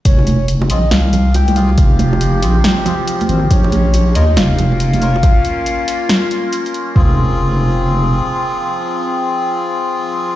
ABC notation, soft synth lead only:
X:1
M:4/4
L:1/8
Q:"Swing 16ths" 1/4=139
K:Fm
V:1 name="Soft synth lead"
d2 z e f2 g f- | f3 z4 c | d3 e f4- | f6 z2 |
z8 | z8 |]